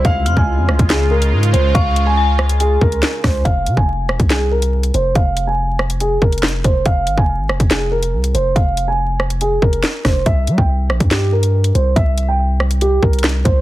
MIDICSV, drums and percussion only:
0, 0, Header, 1, 2, 480
1, 0, Start_track
1, 0, Key_signature, -4, "minor"
1, 0, Tempo, 425532
1, 54, Time_signature, 4, 2, 24, 8
1, 15355, End_track
2, 0, Start_track
2, 0, Title_t, "Drums"
2, 54, Note_on_c, 9, 36, 127
2, 54, Note_on_c, 9, 42, 81
2, 166, Note_off_c, 9, 36, 0
2, 166, Note_off_c, 9, 42, 0
2, 294, Note_on_c, 9, 42, 79
2, 407, Note_off_c, 9, 42, 0
2, 414, Note_on_c, 9, 36, 86
2, 527, Note_off_c, 9, 36, 0
2, 774, Note_on_c, 9, 37, 100
2, 887, Note_off_c, 9, 37, 0
2, 893, Note_on_c, 9, 36, 97
2, 894, Note_on_c, 9, 42, 81
2, 1006, Note_off_c, 9, 36, 0
2, 1007, Note_off_c, 9, 42, 0
2, 1013, Note_on_c, 9, 42, 78
2, 1015, Note_on_c, 9, 38, 115
2, 1017, Note_on_c, 9, 39, 89
2, 1126, Note_off_c, 9, 42, 0
2, 1127, Note_off_c, 9, 38, 0
2, 1130, Note_off_c, 9, 39, 0
2, 1373, Note_on_c, 9, 42, 77
2, 1486, Note_off_c, 9, 42, 0
2, 1613, Note_on_c, 9, 42, 79
2, 1726, Note_off_c, 9, 42, 0
2, 1734, Note_on_c, 9, 42, 82
2, 1847, Note_off_c, 9, 42, 0
2, 1974, Note_on_c, 9, 36, 127
2, 1974, Note_on_c, 9, 42, 77
2, 2087, Note_off_c, 9, 36, 0
2, 2087, Note_off_c, 9, 42, 0
2, 2214, Note_on_c, 9, 42, 77
2, 2327, Note_off_c, 9, 42, 0
2, 2694, Note_on_c, 9, 37, 102
2, 2807, Note_off_c, 9, 37, 0
2, 2814, Note_on_c, 9, 42, 83
2, 2926, Note_off_c, 9, 42, 0
2, 2934, Note_on_c, 9, 42, 80
2, 3047, Note_off_c, 9, 42, 0
2, 3174, Note_on_c, 9, 36, 92
2, 3287, Note_off_c, 9, 36, 0
2, 3295, Note_on_c, 9, 42, 46
2, 3407, Note_off_c, 9, 42, 0
2, 3414, Note_on_c, 9, 38, 113
2, 3414, Note_on_c, 9, 42, 77
2, 3416, Note_on_c, 9, 39, 90
2, 3527, Note_off_c, 9, 38, 0
2, 3527, Note_off_c, 9, 42, 0
2, 3529, Note_off_c, 9, 39, 0
2, 3654, Note_on_c, 9, 37, 94
2, 3654, Note_on_c, 9, 38, 66
2, 3655, Note_on_c, 9, 36, 93
2, 3655, Note_on_c, 9, 46, 54
2, 3767, Note_off_c, 9, 37, 0
2, 3767, Note_off_c, 9, 38, 0
2, 3768, Note_off_c, 9, 36, 0
2, 3768, Note_off_c, 9, 46, 0
2, 3894, Note_on_c, 9, 36, 122
2, 3894, Note_on_c, 9, 42, 78
2, 4007, Note_off_c, 9, 36, 0
2, 4007, Note_off_c, 9, 42, 0
2, 4134, Note_on_c, 9, 42, 73
2, 4246, Note_off_c, 9, 42, 0
2, 4254, Note_on_c, 9, 36, 83
2, 4367, Note_off_c, 9, 36, 0
2, 4615, Note_on_c, 9, 37, 96
2, 4727, Note_off_c, 9, 37, 0
2, 4733, Note_on_c, 9, 36, 94
2, 4734, Note_on_c, 9, 42, 80
2, 4846, Note_off_c, 9, 36, 0
2, 4847, Note_off_c, 9, 42, 0
2, 4853, Note_on_c, 9, 42, 75
2, 4854, Note_on_c, 9, 38, 112
2, 4856, Note_on_c, 9, 39, 90
2, 4966, Note_off_c, 9, 42, 0
2, 4967, Note_off_c, 9, 38, 0
2, 4969, Note_off_c, 9, 39, 0
2, 5213, Note_on_c, 9, 42, 78
2, 5325, Note_off_c, 9, 42, 0
2, 5452, Note_on_c, 9, 42, 77
2, 5565, Note_off_c, 9, 42, 0
2, 5574, Note_on_c, 9, 42, 75
2, 5687, Note_off_c, 9, 42, 0
2, 5814, Note_on_c, 9, 36, 125
2, 5814, Note_on_c, 9, 42, 79
2, 5926, Note_off_c, 9, 36, 0
2, 5926, Note_off_c, 9, 42, 0
2, 6053, Note_on_c, 9, 42, 75
2, 6166, Note_off_c, 9, 42, 0
2, 6534, Note_on_c, 9, 37, 97
2, 6647, Note_off_c, 9, 37, 0
2, 6654, Note_on_c, 9, 42, 80
2, 6767, Note_off_c, 9, 42, 0
2, 6773, Note_on_c, 9, 42, 74
2, 6886, Note_off_c, 9, 42, 0
2, 7013, Note_on_c, 9, 36, 93
2, 7126, Note_off_c, 9, 36, 0
2, 7134, Note_on_c, 9, 42, 44
2, 7194, Note_off_c, 9, 42, 0
2, 7194, Note_on_c, 9, 42, 53
2, 7253, Note_off_c, 9, 42, 0
2, 7253, Note_on_c, 9, 38, 112
2, 7253, Note_on_c, 9, 42, 65
2, 7255, Note_on_c, 9, 39, 88
2, 7314, Note_off_c, 9, 42, 0
2, 7314, Note_on_c, 9, 42, 74
2, 7366, Note_off_c, 9, 38, 0
2, 7368, Note_off_c, 9, 39, 0
2, 7426, Note_off_c, 9, 42, 0
2, 7494, Note_on_c, 9, 36, 91
2, 7494, Note_on_c, 9, 42, 77
2, 7607, Note_off_c, 9, 36, 0
2, 7607, Note_off_c, 9, 42, 0
2, 7732, Note_on_c, 9, 42, 78
2, 7733, Note_on_c, 9, 36, 122
2, 7845, Note_off_c, 9, 42, 0
2, 7846, Note_off_c, 9, 36, 0
2, 7973, Note_on_c, 9, 42, 76
2, 8085, Note_off_c, 9, 42, 0
2, 8094, Note_on_c, 9, 36, 85
2, 8206, Note_off_c, 9, 36, 0
2, 8454, Note_on_c, 9, 37, 101
2, 8567, Note_off_c, 9, 37, 0
2, 8573, Note_on_c, 9, 36, 97
2, 8573, Note_on_c, 9, 42, 80
2, 8686, Note_off_c, 9, 36, 0
2, 8686, Note_off_c, 9, 42, 0
2, 8692, Note_on_c, 9, 42, 74
2, 8694, Note_on_c, 9, 38, 110
2, 8696, Note_on_c, 9, 39, 87
2, 8805, Note_off_c, 9, 42, 0
2, 8807, Note_off_c, 9, 38, 0
2, 8809, Note_off_c, 9, 39, 0
2, 9053, Note_on_c, 9, 42, 74
2, 9165, Note_off_c, 9, 42, 0
2, 9292, Note_on_c, 9, 42, 76
2, 9405, Note_off_c, 9, 42, 0
2, 9415, Note_on_c, 9, 42, 75
2, 9527, Note_off_c, 9, 42, 0
2, 9654, Note_on_c, 9, 36, 124
2, 9654, Note_on_c, 9, 42, 78
2, 9767, Note_off_c, 9, 36, 0
2, 9767, Note_off_c, 9, 42, 0
2, 9894, Note_on_c, 9, 42, 76
2, 10007, Note_off_c, 9, 42, 0
2, 10375, Note_on_c, 9, 37, 95
2, 10488, Note_off_c, 9, 37, 0
2, 10494, Note_on_c, 9, 42, 82
2, 10607, Note_off_c, 9, 42, 0
2, 10613, Note_on_c, 9, 42, 77
2, 10726, Note_off_c, 9, 42, 0
2, 10854, Note_on_c, 9, 36, 90
2, 10966, Note_off_c, 9, 36, 0
2, 10974, Note_on_c, 9, 42, 45
2, 11087, Note_off_c, 9, 42, 0
2, 11093, Note_on_c, 9, 38, 107
2, 11094, Note_on_c, 9, 42, 74
2, 11095, Note_on_c, 9, 39, 88
2, 11206, Note_off_c, 9, 38, 0
2, 11206, Note_off_c, 9, 42, 0
2, 11208, Note_off_c, 9, 39, 0
2, 11334, Note_on_c, 9, 36, 93
2, 11334, Note_on_c, 9, 37, 95
2, 11334, Note_on_c, 9, 38, 64
2, 11335, Note_on_c, 9, 46, 54
2, 11447, Note_off_c, 9, 36, 0
2, 11447, Note_off_c, 9, 37, 0
2, 11447, Note_off_c, 9, 38, 0
2, 11447, Note_off_c, 9, 46, 0
2, 11573, Note_on_c, 9, 42, 77
2, 11574, Note_on_c, 9, 36, 122
2, 11686, Note_off_c, 9, 42, 0
2, 11687, Note_off_c, 9, 36, 0
2, 11814, Note_on_c, 9, 42, 76
2, 11926, Note_off_c, 9, 42, 0
2, 11934, Note_on_c, 9, 36, 86
2, 12047, Note_off_c, 9, 36, 0
2, 12294, Note_on_c, 9, 37, 97
2, 12407, Note_off_c, 9, 37, 0
2, 12413, Note_on_c, 9, 36, 96
2, 12413, Note_on_c, 9, 42, 79
2, 12526, Note_off_c, 9, 36, 0
2, 12526, Note_off_c, 9, 42, 0
2, 12533, Note_on_c, 9, 42, 75
2, 12534, Note_on_c, 9, 38, 108
2, 12536, Note_on_c, 9, 39, 88
2, 12645, Note_off_c, 9, 42, 0
2, 12647, Note_off_c, 9, 38, 0
2, 12649, Note_off_c, 9, 39, 0
2, 12892, Note_on_c, 9, 42, 76
2, 13005, Note_off_c, 9, 42, 0
2, 13132, Note_on_c, 9, 42, 76
2, 13245, Note_off_c, 9, 42, 0
2, 13255, Note_on_c, 9, 42, 76
2, 13368, Note_off_c, 9, 42, 0
2, 13494, Note_on_c, 9, 36, 123
2, 13494, Note_on_c, 9, 42, 78
2, 13607, Note_off_c, 9, 36, 0
2, 13607, Note_off_c, 9, 42, 0
2, 13734, Note_on_c, 9, 42, 76
2, 13846, Note_off_c, 9, 42, 0
2, 14214, Note_on_c, 9, 37, 95
2, 14327, Note_off_c, 9, 37, 0
2, 14333, Note_on_c, 9, 42, 80
2, 14446, Note_off_c, 9, 42, 0
2, 14453, Note_on_c, 9, 42, 77
2, 14566, Note_off_c, 9, 42, 0
2, 14694, Note_on_c, 9, 36, 89
2, 14806, Note_off_c, 9, 36, 0
2, 14814, Note_on_c, 9, 42, 45
2, 14874, Note_off_c, 9, 42, 0
2, 14874, Note_on_c, 9, 42, 54
2, 14933, Note_on_c, 9, 38, 108
2, 14934, Note_off_c, 9, 42, 0
2, 14934, Note_on_c, 9, 42, 65
2, 14936, Note_on_c, 9, 39, 91
2, 14994, Note_off_c, 9, 42, 0
2, 14994, Note_on_c, 9, 42, 72
2, 15046, Note_off_c, 9, 38, 0
2, 15048, Note_off_c, 9, 39, 0
2, 15107, Note_off_c, 9, 42, 0
2, 15175, Note_on_c, 9, 36, 96
2, 15175, Note_on_c, 9, 42, 77
2, 15288, Note_off_c, 9, 36, 0
2, 15288, Note_off_c, 9, 42, 0
2, 15355, End_track
0, 0, End_of_file